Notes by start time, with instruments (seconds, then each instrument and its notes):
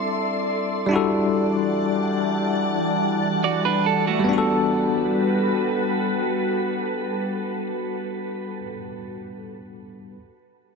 Already playing: tine electric piano G3 C4 D4 E4 A4, ambient pad A4 D5 E5 C6
0.86 tine electric piano G3 D4
0.90 ambient pad E3 G3 F#5 A5, tine electric piano E4 F#4
0.96 tine electric piano A4
3.44 clean electric guitar F#4 D5
3.65 clean electric guitar D4 B4
3.86 clean electric guitar A4
4.07 clean electric guitar A3 F#4
4.19 tine electric piano G3
4.24 tine electric piano B3
4.29 ambient pad G3 F#4 A4 B4, tine electric piano D4
4.33 tine electric piano F#4
4.38 tine electric piano A4